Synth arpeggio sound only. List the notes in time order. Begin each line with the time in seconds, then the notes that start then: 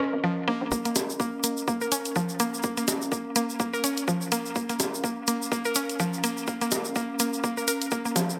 0.24 F3
0.48 A#3
0.72 A#3
0.85 A#3
1.20 A#3
1.44 A#3
1.68 A#3
1.81 A#4
1.92 C#4
2.16 F3
2.40 A#3
2.64 A#3
2.77 A#3
3.12 A#3
3.36 A#3
3.60 A#3
3.73 A#4
3.84 C#4
4.08 F3
4.32 A#3
4.56 A#3
4.70 A#3
5.04 A#3
5.28 A#3
5.52 A#3
5.65 A#4
5.76 C#4
6.00 F3
6.24 A#3
6.48 A#3
6.61 A#3
6.96 A#3
7.20 A#3
7.44 A#3
7.57 A#4
7.68 A#4
7.92 A#3
8.05 A#3
8.16 F3